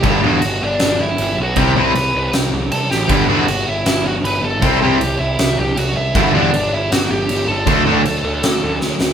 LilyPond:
<<
  \new Staff \with { instrumentName = "Lead electric guitar" } { \time 4/4 \key g \lydian \tempo 4 = 157 <g' g''>8 <fis' fis''>4 <d' d''>4 <e' e''>4 <fis' fis''>8 | <g' g''>8 <b' b''>4. r4 <a' a''>8 <g' g''>8~ | <g' g''>8 <fis' fis''>4 <e' e''>4 <fis' fis''>8 <b' b''>8 <a' a''>8~ | <a' a''>8 <g' g''>4 <e' e''>4 <g' g''>8 <fis' fis''>8 <e' e''>8~ |
<e' e''>8 <d' d''>4 <e' e''>8 <fis' fis''>8 <g' g''>4 <a' a''>8~ | <a' a''>2. r4 | }
  \new Staff \with { instrumentName = "Distorted electric guitar" } { \clef bass \time 4/4 \key g \lydian <g, d g b d'>8 <g, d g b d'>8 r2. | <c g c' e'>8 <c g c' e'>8 r2. | <g, d g b d'>8 <g, d g b d'>8 r2. | <c g c' e'>8 <c g c' e'>8 r2. |
<g, d g b d'>8 <g, d g b d'>8 r2. | <d fis a d'>8 <d fis a d'>8 r2. | }
  \new Staff \with { instrumentName = "Distorted electric guitar" } { \clef bass \time 4/4 \key g \lydian <g, d g>8 <g, d g>8 r2. | <c g c'>8 <c g c'>8 r2. | <g, d g>8 <g, d g>8 r2. | <c g c'>8 <c g c'>8 r2. |
<g, d g>8 <g, d g>8 r2. | <d a d'>8 <d a d'>8 r2. | }
  \new Staff \with { instrumentName = "Picked electric bass" } { \clef bass \time 4/4 \key g \lydian g,,8 e,8 g,,8 g,,8 g,,8 g,,8 g,,8 b,,8 | c,8 c,8 c,8 c,8 c,8 c,8 c,8 a,,8 | g,,8 e,8 g,,8 g,,8 g,,8 g,,8 g,,8 g,,8 | c,8 c,8 c,8 c,8 c,8 c,8 c,8 c,8 |
g,,8 e,8 g,,8 g,,8 g,,8 g,,8 g,,8 g,,8 | d,8 d,8 d,8 d,8 d,8 d,8 d,8 d,8 | }
  \new DrumStaff \with { instrumentName = "Drums" } \drummode { \time 4/4 <cymc bd>4 cymc4 <cymc sn>4 cymc4 | <cymc bd>4 cymc4 <cymc sn>4 cymc8 sn8 | <cymc bd>4 cymc4 <cymc sn>4 cymc4 | <cymc bd>4 cymc4 <cymc sn>4 cymc4 |
<cymc bd>4 cymc4 <cymc sn>4 cymc4 | <cymc bd>4 cymc4 <cymc sn>4 sn8 sn8 | }
>>